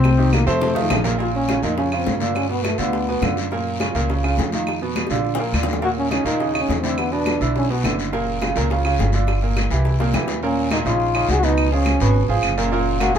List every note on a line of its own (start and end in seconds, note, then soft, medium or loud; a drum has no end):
0.00 0.42 C2 medium
0.00 0.13 C3 medium
0.00 0.13 C4 medium
0.00 0.35 C4 medium
0.00 0.13 C5 medium
0.00 long guiro medium
0.00 claves medium
0.04 high bongo medium
0.04 high conga medium
0.18 0.42 D#3 medium
0.18 0.42 D#4 medium
0.18 0.42 G4 medium
0.18 high bongo soft
0.33 0.48 A#3 loud
0.33 high bongo medium
0.33 high conga medium
0.33 short guiro medium
0.33 claves medium
0.47 0.87 F2 medium
0.47 0.71 C3 loud
0.47 1.02 A3 medium
0.47 0.71 C4 medium
0.47 0.71 C5 medium
0.47 short guiro medium
0.61 high bongo medium
0.61 low conga medium
0.61 long guiro medium
0.75 0.99 D#3 medium
0.75 0.99 D#4 medium
0.75 0.99 F4 medium
0.75 high bongo soft
0.75 low conga medium
0.90 1.58 A#1 medium
0.90 high bongo medium
0.90 low bongo medium
0.90 low conga medium
0.90 short guiro medium
0.90 claves medium
1.04 1.16 A#2 medium
1.04 1.17 A#3 medium
1.04 1.17 A#4 medium
1.04 low conga medium
1.04 short guiro medium
1.18 1.42 A#2 medium
1.18 1.43 A#3 medium
1.18 1.34 F4 medium
1.18 1.43 A#4 medium
1.18 high bongo medium
1.18 high conga soft
1.18 long guiro medium
1.34 1.66 C#4 medium
1.34 high conga soft
1.48 1.61 C#3 medium
1.48 1.61 C#4 medium
1.48 1.61 F4 medium
1.48 high bongo medium
1.48 high conga medium
1.48 short guiro medium
1.48 claves medium
1.62 2.03 F2 medium
1.62 1.75 A#2 medium
1.62 1.75 A#3 medium
1.62 1.77 D#4 medium
1.62 1.75 A#4 medium
1.62 high bongo soft
1.62 high conga soft
1.62 short guiro medium
1.78 1.90 C#3 medium
1.78 1.90 C#4 medium
1.78 1.98 C#4 medium
1.78 1.90 F4 medium
1.78 high bongo medium
1.78 high conga soft
1.78 long guiro medium
1.92 2.16 C#3 medium
1.92 2.16 C#4 medium
1.92 2.16 F4 medium
1.92 high bongo soft
1.92 high conga soft
1.92 claves medium
1.97 2.16 C4 medium
2.06 2.74 G2 medium
2.06 high bongo soft
2.06 low bongo medium
2.06 high conga medium
2.06 short guiro medium
2.17 2.37 A#3 medium
2.17 short guiro medium
2.21 2.45 D3 medium
2.21 2.45 D4 medium
2.21 2.45 F4 medium
2.21 high bongo soft
2.21 high conga medium
2.35 2.50 C#4 loud
2.35 high bongo medium
2.35 high conga soft
2.35 long guiro medium
2.35 claves medium
2.49 2.73 B2 medium
2.49 2.74 B3 medium
2.49 2.66 B3 medium
2.49 2.74 B4 medium
2.49 high conga soft
2.64 2.80 A3 medium
2.64 high bongo medium
2.64 high conga medium
2.64 short guiro medium
2.64 claves medium
2.78 3.19 D2 medium
2.78 3.02 D3 medium
2.78 3.37 B3 medium
2.78 3.03 D4 medium
2.78 3.03 F4 medium
2.78 high bongo soft
2.78 high conga soft
2.78 short guiro medium
2.93 high bongo medium
2.93 high conga soft
2.93 long guiro medium
3.08 3.20 B2 medium
3.08 3.20 B3 medium
3.08 3.20 B4 medium
3.08 high bongo soft
3.08 high conga soft
3.22 3.89 F#2 medium
3.22 3.46 D3 medium
3.22 3.46 D4 medium
3.22 3.46 F4 medium
3.22 high bongo soft
3.22 low bongo medium
3.22 high conga medium
3.22 short guiro medium
3.22 claves medium
3.37 high bongo soft
3.37 short guiro medium
3.51 3.76 A#2 medium
3.51 3.76 A#3 medium
3.51 3.76 A#4 medium
3.51 high bongo medium
3.51 high conga soft
3.51 long guiro medium
3.80 3.92 C#3 medium
3.80 3.93 C#4 medium
3.80 3.93 F4 medium
3.80 high bongo medium
3.80 high conga medium
3.80 short guiro medium
3.80 claves medium
3.95 4.35 C#2 medium
3.95 4.07 A#2 medium
3.95 4.07 A#3 medium
3.95 4.07 A#4 medium
3.95 high bongo soft
3.95 high conga soft
3.95 short guiro medium
4.09 4.21 C#3 medium
4.09 4.22 C#4 medium
4.09 4.22 F4 medium
4.09 high bongo medium
4.09 high conga soft
4.09 long guiro medium
4.23 4.47 C#3 medium
4.23 4.48 C#4 medium
4.23 4.48 F4 medium
4.23 high bongo soft
4.23 high conga soft
4.23 claves medium
4.37 5.05 F2 medium
4.37 high bongo soft
4.37 low bongo medium
4.37 high conga medium
4.37 short guiro medium
4.52 4.77 D#3 medium
4.52 4.77 D#4 medium
4.52 4.77 F4 medium
4.52 high bongo soft
4.52 high conga medium
4.52 short guiro medium
4.67 high bongo medium
4.67 high conga soft
4.67 long guiro medium
4.67 claves medium
4.81 5.06 B2 medium
4.81 5.06 B3 medium
4.81 5.06 B4 medium
4.81 high conga soft
4.96 high bongo medium
4.96 high conga medium
4.96 short guiro medium
4.96 claves medium
5.07 5.50 A#1 medium
5.07 5.34 D3 medium
5.07 5.34 D4 medium
5.07 high bongo medium
5.07 high conga soft
5.07 short guiro medium
5.11 5.34 F4 medium
5.15 high bongo medium
5.24 high conga soft
5.24 long guiro medium
5.35 5.51 A#2 medium
5.35 low bongo loud
5.35 high conga soft
5.39 5.51 A#3 medium
5.39 5.51 A#4 medium
5.53 6.20 D#2 medium
5.53 5.77 D3 medium
5.53 5.78 D4 medium
5.53 5.78 F4 medium
5.53 high conga medium
5.53 short guiro medium
5.53 claves medium
5.63 low bongo medium
5.68 short guiro medium
5.73 low bongo medium
5.82 6.06 A#2 medium
5.82 6.06 A#3 medium
5.82 5.90 F#4 loud
5.82 6.06 A#4 medium
5.82 high bongo medium
5.82 high conga soft
5.82 long guiro medium
5.97 6.11 C#4 medium
5.97 high conga soft
6.10 6.23 C#3 medium
6.10 6.23 C#4 medium
6.10 6.30 C#4 medium
6.10 6.23 D#4 medium
6.10 high bongo medium
6.10 high conga medium
6.10 short guiro medium
6.10 claves medium
6.25 6.65 D#2 medium
6.25 6.37 A#2 medium
6.25 6.38 A#3 medium
6.25 6.61 D#4 loud
6.25 6.38 A#4 medium
6.25 high bongo soft
6.25 high conga soft
6.25 short guiro medium
6.40 6.52 C#3 medium
6.40 6.52 C#4 medium
6.40 6.52 D#4 medium
6.40 high bongo medium
6.40 high conga soft
6.40 long guiro medium
6.54 6.78 C#3 medium
6.54 6.78 C#4 medium
6.54 6.78 D#4 medium
6.54 high bongo soft
6.54 high conga soft
6.54 claves medium
6.61 6.78 C#4 medium
6.68 7.35 E2 medium
6.68 high bongo soft
6.68 low bongo medium
6.68 high conga medium
6.68 short guiro medium
6.80 7.07 D3 medium
6.80 6.99 C4 medium
6.80 7.07 D4 medium
6.80 7.07 E4 medium
6.80 high conga medium
6.80 short guiro medium
6.84 high bongo soft
6.98 7.14 B3 medium
6.98 high bongo medium
6.98 high conga soft
6.98 long guiro medium
6.98 claves medium
7.12 7.36 B2 medium
7.12 7.36 B3 medium
7.12 7.41 D4 medium
7.12 7.36 B4 medium
7.12 high conga soft
7.26 high bongo medium
7.26 high conga medium
7.26 short guiro medium
7.26 claves medium
7.41 7.81 B1 medium
7.41 7.64 D3 medium
7.41 7.65 D4 medium
7.41 7.65 E4 medium
7.41 high bongo soft
7.41 high conga soft
7.41 short guiro medium
7.55 7.69 C#4 medium
7.55 high bongo medium
7.55 high conga soft
7.55 long guiro medium
7.70 7.82 B2 medium
7.70 7.82 B3 medium
7.70 7.97 B3 medium
7.70 7.82 B4 medium
7.70 high bongo soft
7.70 high conga soft
7.83 8.50 F#1 medium
7.83 8.07 D3 medium
7.83 8.07 D4 medium
7.83 8.07 E4 medium
7.83 high bongo soft
7.83 low bongo medium
7.83 high conga medium
7.83 short guiro medium
7.83 claves medium
7.99 high bongo soft
7.99 short guiro medium
8.12 8.36 A#2 medium
8.12 8.36 A#3 medium
8.12 8.37 A#4 medium
8.12 high bongo medium
8.12 high conga soft
8.12 long guiro medium
8.27 high conga soft
8.41 8.53 C#3 medium
8.41 8.54 C#4 medium
8.41 8.54 F4 medium
8.41 high bongo medium
8.41 high conga medium
8.41 short guiro medium
8.41 claves medium
8.56 8.96 C#2 medium
8.56 8.68 A#2 medium
8.56 8.68 A#3 medium
8.56 8.68 A#4 medium
8.56 high bongo soft
8.56 high conga soft
8.56 short guiro medium
8.70 8.82 C#3 medium
8.70 8.83 C#4 medium
8.70 8.83 F4 medium
8.70 high bongo medium
8.70 high conga soft
8.70 long guiro medium
8.85 9.08 C#3 medium
8.85 9.09 C#4 medium
8.85 9.09 F4 medium
8.85 high bongo soft
8.85 high conga soft
8.85 claves medium
8.99 9.65 G1 medium
8.99 high bongo soft
8.99 low bongo medium
8.99 high conga medium
8.99 short guiro medium
9.12 9.37 D3 medium
9.12 9.38 D4 medium
9.12 9.38 F4 medium
9.12 high bongo soft
9.12 short guiro medium
9.27 high bongo medium
9.27 high conga soft
9.27 long guiro medium
9.27 claves medium
9.42 9.66 A#2 medium
9.42 9.66 A#3 medium
9.42 9.66 A#4 medium
9.42 high conga soft
9.57 high bongo medium
9.57 high conga medium
9.57 short guiro medium
9.57 claves medium
9.71 10.11 C2 medium
9.71 9.94 E3 medium
9.71 9.95 E4 medium
9.71 9.95 G4 medium
9.71 high bongo soft
9.71 high conga soft
9.71 short guiro medium
9.85 high bongo medium
9.85 high conga soft
9.85 long guiro medium
9.99 10.11 A#2 medium
9.99 10.12 A#3 medium
9.99 10.12 A#4 medium
9.99 high bongo medium
9.99 high conga soft
10.13 10.80 D#2 medium
10.13 10.38 E3 medium
10.13 10.38 E4 medium
10.13 10.38 G4 medium
10.13 low bongo medium
10.13 high conga medium
10.13 short guiro medium
10.13 claves medium
10.28 low bongo medium
10.28 high conga medium
10.28 short guiro medium
10.42 10.66 A#2 medium
10.42 10.66 A#3 medium
10.42 10.70 C#4 medium
10.42 10.66 A#4 medium
10.42 high conga soft
10.42 long guiro medium
10.56 high conga soft
10.71 10.83 A#2 medium
10.71 10.83 A#3 medium
10.71 10.79 D#4 medium
10.71 10.83 A#4 medium
10.71 high conga medium
10.71 short guiro medium
10.71 claves medium
10.85 11.25 A#1 medium
10.85 11.09 C#3 medium
10.85 11.09 C#4 medium
10.85 11.09 D#4 medium
10.85 11.32 F4 loud
10.85 high conga soft
10.85 short guiro medium
11.00 high conga soft
11.00 long guiro medium
11.15 11.38 C#3 medium
11.15 11.38 C#4 medium
11.15 11.38 D#4 medium
11.15 high conga soft
11.15 claves medium
11.28 11.94 C#2 medium
11.28 11.34 F#4 loud
11.28 11.38 G#4 medium
11.28 high conga medium
11.28 short guiro medium
11.36 11.46 F#4 loud
11.43 11.66 B2 medium
11.43 11.66 B3 medium
11.43 11.72 D#4 loud
11.43 11.67 B4 medium
11.43 high conga medium
11.43 short guiro medium
11.57 high conga soft
11.57 long guiro medium
11.57 claves medium
11.72 11.95 F3 medium
11.72 12.26 C#4 medium
11.72 11.95 F4 medium
11.72 11.95 G#4 medium
11.72 high conga soft
11.86 high conga medium
11.86 short guiro medium
11.86 claves medium
12.00 12.27 G#1 loud
12.00 12.24 B2 medium
12.00 12.24 B3 medium
12.00 12.25 B4 medium
12.00 high conga soft
12.00 short guiro medium
12.14 high conga soft
12.14 long guiro medium
12.28 12.42 G#1 medium
12.28 12.52 F3 medium
12.28 12.53 F4 medium
12.28 12.53 G#4 medium
12.28 high conga soft
12.43 13.09 F#1 medium
12.43 high conga soft
12.43 short guiro medium
12.43 claves medium
12.58 12.69 A#2 medium
12.58 12.69 A#3 medium
12.58 12.70 A#4 medium
12.58 short guiro medium
12.72 12.95 A#2 medium
12.72 12.95 A#3 medium
12.72 13.02 F4 medium
12.72 12.96 A#4 medium
12.72 high conga soft
12.72 long guiro medium
12.87 high conga soft
13.00 13.12 A#2 medium
13.00 13.12 A#3 medium
13.00 13.15 F#4 loud
13.00 13.12 A#4 medium
13.00 high conga medium
13.00 short guiro medium
13.00 claves medium
13.15 13.19 C#2 medium
13.15 13.19 C#3 medium
13.15 13.19 C#4 medium
13.15 high conga soft
13.15 short guiro medium